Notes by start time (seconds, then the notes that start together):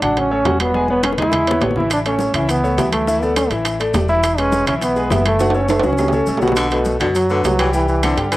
0.02 A1 F#3 D4 F#4 F#5, low conga, high timbale, claves
0.17 C#4, high bongo, high conga, low conga, high timbale
0.31 A3 A4 C#5, high conga
0.45 E1 F#3 F#4 F#5, high bongo, low bongo, high conga, high timbale, low timbale
0.60 B3, high conga, high timbale, claves
0.74 G#3 G#4 G#5, high bongo, high conga
0.88 B3 B4 C#5, high bongo, high conga
1.03 C#4, high bongo, high conga, high timbale, low timbale, claves
1.12 high bongo
1.18 E2 G#3 E4 G#4 G#5, low conga, high timbale
1.22 low bongo
1.32 high bongo, low conga, high timbale, claves
1.47 B3 B4 C#5, low bongo, high timbale
1.61 A1 B3 B4 C#5, low bongo, high timbale, low timbale
1.71 low bongo
1.76 E3 E4 E5, low conga
1.80 low bongo
1.90 D4, high bongo, high conga, high timbale, claves, maracas
2.04 A3 C#4 A4 C#5, high conga, high timbale, maracas
2.19 high bongo, high conga, low timbale, maracas
2.34 C#2 E3 C#4 E4 E5, low conga, high timbale, claves, maracas
2.48 B3, high bongo, high conga, low conga, high timbale, maracas
2.64 A3 A4 C#5, maracas
2.77 D2 E3 E4 E5, high bongo, low bongo, high conga, high timbale, low timbale, maracas
2.92 A3, high conga, high timbale, claves, maracas
3.07 E3 E4 E5, high bongo, maracas
3.22 A3 B3 A4 D5, high bongo, high conga, maracas
3.36 C#4, high bongo, high conga, high timbale, low timbale, claves, maracas
3.50 A1 E3 E4 E5, high bongo, high conga, high timbale, maracas
3.65 high bongo, high conga, high timbale, claves, maracas
3.80 A3 A4 D5, high bongo, high conga, high timbale, maracas
3.94 E1 A3 A4 D5, high bongo, low bongo, high conga, high timbale, low timbale, maracas
4.08 E3 E4 E5, high conga, maracas
4.23 high bongo, high conga, high timbale, claves, maracas
4.38 G#3 C#4 G#4 B4, high conga, high timbale, maracas
4.52 high bongo, high conga, low timbale, maracas
4.66 B1 E3 C#4 E4 E5, low conga, high timbale, claves, maracas
4.82 B3, high bongo, high conga, high timbale, maracas
4.96 G#3 G#4 B4, high conga, maracas
5.10 F#1 E3 B3 E4 E5, high bongo, low bongo, high conga, high timbale, low timbale, maracas
5.25 A3, high conga, high timbale, claves, maracas
5.39 F#3 F#4 F#5, high bongo, high conga, high timbale, maracas
5.50 high timbale
5.54 A3 C#4 A4 C#5, high bongo, high conga, maracas
5.68 A3, high bongo, high conga, high timbale, claves, maracas
5.79 C#2, high timbale, maracas
5.83 F#3 C#4 F#4 F#5, high bongo, high conga
5.93 high bongo
5.98 high conga, low timbale, claves, maracas
6.03 high bongo
6.08 low timbale
6.13 A3 A4 C#5, low bongo, high conga, maracas
6.26 B1 A3 A4 C#5, high conga, maracas
6.37 low timbale
6.42 B2 F#3 F#4 F#5, low bongo, maracas
6.48 low timbale
6.52 low bongo
6.56 D3, high conga, high timbale, claves, maracas
6.71 B2 A3 A4 B4, high conga, high timbale, maracas
6.85 high conga, low timbale, maracas
6.99 F#2 B2 D3 F#3 F#4 F#5, low conga, high timbale, claves, maracas
7.15 F#3, high conga, high timbale, maracas
7.29 D3 A3 A4 B4, high conga, maracas
7.43 C2 F#3, high conga, high timbale, low timbale, maracas
7.59 E3 G3 G4 G5, high conga, high timbale, claves, maracas
7.73 E3 G3 G4 G5, high conga, maracas
7.88 E3, high conga, maracas
8.03 D3 C4 C5 D5, high conga, high timbale, low timbale, claves, maracas
8.17 G2 D3 G3 G4 G5, high conga, high timbale, maracas
8.31 D3 E3, high conga, high timbale, claves, maracas